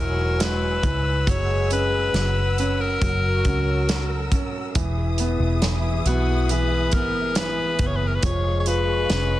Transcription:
Already playing: E1 C#3 F#3 G#3 E4 F#4 C#5 G#5 E6
0.00 A#4
0.40 G#3 B4, snare, closed hi-hat
0.83 C#2 E4, kick, closed hi-hat
1.26 F#1 F#3 G#3 G#4 B4 C#5 F#5, kick, closed hi-hat
1.71 C#4 B4, closed hi-hat
2.14 F#1 F#3, snare, closed hi-hat
2.58 C#4 B4, closed hi-hat
2.81 A#4
3.01 F#1 F#3 F#4 A#4, kick, closed hi-hat
3.45 C#2 C#4, kick, closed hi-hat
3.89 F#3, snare, closed hi-hat
4.32 C#4, kick, closed hi-hat
4.75 E1 E3 E4 G#4 E5 D#6, kick, closed hi-hat
5.18 B3, closed hi-hat
5.40 E1
5.62 E3, snare, closed hi-hat
6.05 B1 B3 F#4, closed hi-hat
6.49 E3 B4, closed hi-hat
6.91 G#1 B3 A#4, kick, closed hi-hat
7.35 E3 B4, snare, closed hi-hat
7.79 F#1 B3, kick, closed hi-hat
7.87 C#5
7.96 B4
8.07 A#4
8.15 B4
8.23 F1 F3 G#3 G#4 C#5 F5 C#6, kick, closed hi-hat
8.60 C#5
8.66 F4 B4, closed hi-hat
9.10 F1 C#4, snare, closed hi-hat

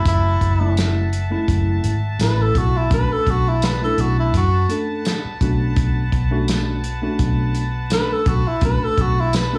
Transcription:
Already playing: G#3 A3 C#4 F#4 E5 F#5 A5
0.06 F#1 E4, kick, closed hi-hat
0.41 F#1, kick, closed hi-hat
0.60 G#3 A3 C#4 E4
0.77 snare, closed hi-hat, tambourine
1.13 closed hi-hat
1.31 G#3 A3 C#4 E4
1.48 F#1, kick, closed hi-hat
1.84 G#1, closed hi-hat
2.19 A1 G#3 A3 C#4 E4 B4, snare, closed hi-hat, tambourine
2.42 A4
2.55 B1 F#4, kick, closed hi-hat
2.77 E4
2.90 B1 A3 C#4 D4 F#4 B4 F#5, kick, closed hi-hat
3.12 A4
3.27 B1 F#4, kick, closed hi-hat
3.48 E4
3.62 B4, snare, closed hi-hat, tambourine
3.81 A3 C#4 D4 E4 A4
3.98 B1 F#4, closed hi-hat
4.19 E4
4.34 F#2 F#4, kick, closed hi-hat
4.69 A3 C#4 D4 A4, closed hi-hat
5.05 snare, closed hi-hat, tambourine
5.25 muted fingered electric bass stroke
5.41 B1 A3 C#4 D4 F#4, kick, closed hi-hat
5.76 B1, kick, closed hi-hat
6.12 B1, kick, closed hi-hat
6.31 A3 C#4 D4 F#4
6.48 snare, closed hi-hat, tambourine
6.84 closed hi-hat
7.02 A3 C#4 D4 F#4
7.19 B1, kick, closed hi-hat
7.55 closed hi-hat
7.90 A3 C#4 D4 A4 B4, snare, closed hi-hat, tambourine
8.13 A4
8.26 B1 F#4, kick, closed hi-hat
8.47 E4
8.61 B1 A3 C#4 D4 F#4 B4, kick, closed hi-hat
8.84 A4
8.98 B1 F#4, kick, closed hi-hat
9.20 E4
9.33 B4, snare, closed hi-hat, tambourine
9.52 A3 C#4 D4 F#4 A4

